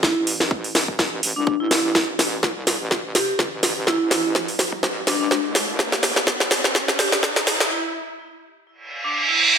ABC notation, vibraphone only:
X:1
M:4/4
L:1/16
Q:"Swing 16ths" 1/4=125
K:Am
V:1 name="Vibraphone"
E z8 z2 D z E3 | z8 z2 G z4 z | E z E z6 z D D z4 | z8 z2 G z4 z |
E z8 z2 D z E3 |]